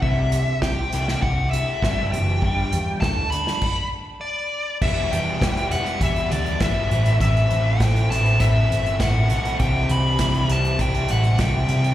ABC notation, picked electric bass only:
X:1
M:4/4
L:1/8
Q:1/4=100
K:Em
V:1 name="Picked electric bass" clef=bass
C,,2 C,, C,, C,,2 G,,, F,,, | G,,, E,, D,,2 z4 | E,,, E,,, E,,, E,,, E,,, D,, G,,, A,,, | A,,, A,,, A,,, A,,, A,,, G,,, A,,, B,,, |
C,, C,, C,, C,, C,, A,,, C,, C, |]